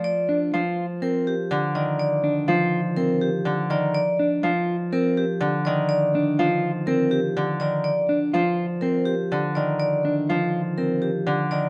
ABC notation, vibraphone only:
X:1
M:4/4
L:1/8
Q:1/4=123
K:Eb
V:1 name="Vibraphone"
d z3 B G z d | d z3 B G z d | d z3 B G z d | d z3 B G z d |
d z3 B G z d | d z3 B G z d |]